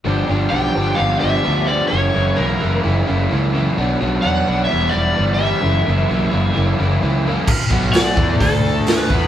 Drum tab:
CC |--------|--------|--------|--------|
HH |--------|--------|--------|--------|
SD |--------|--------|--------|--------|
BD |--------|--------|--------|--------|

CC |x-------|
HH |--o-o-o-|
SD |--o---o-|
BD |oo-oo--o|